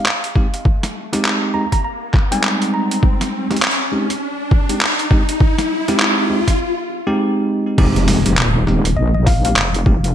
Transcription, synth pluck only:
1.54 1.69 A#5 medium
1.72 1.80 A#5 loud
1.84 1.96 A#5 medium
2.32 2.71 G#5 medium
2.74 3.33 A#5 medium
8.96 9.08 D#5 medium
9.14 9.22 D#5 medium
9.26 9.38 F5 medium
9.45 9.52 F5 medium

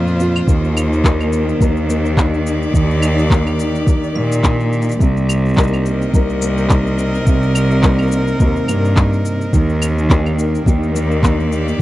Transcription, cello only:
0.00 0.44 F2 medium
0.48 1.57 D#2 loud
1.61 2.70 D#2 medium
2.74 3.83 D#2 loud
4.15 4.96 A#2 medium
5.01 6.10 C2 loud
6.14 7.23 C2 loud
7.27 8.36 C2 loud
8.40 8.63 D#2 medium
8.69 9.36 G2 medium
9.53 10.62 D#2 loud
10.66 11.75 D#2 medium

